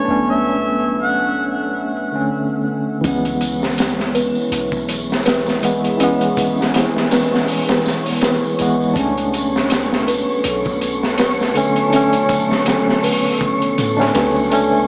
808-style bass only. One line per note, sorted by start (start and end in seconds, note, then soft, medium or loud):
0.08 2.30 C#2 medium
3.04 4.32 C#2 medium
4.51 6.60 B1 medium
6.58 6.90 C#2 loud
8.60 8.93 G#1 medium
8.96 10.24 C#2 loud
10.45 12.52 B1 loud
12.50 12.82 C#2 loud
13.78 14.11 A2 medium
14.15 14.86 C#2 loud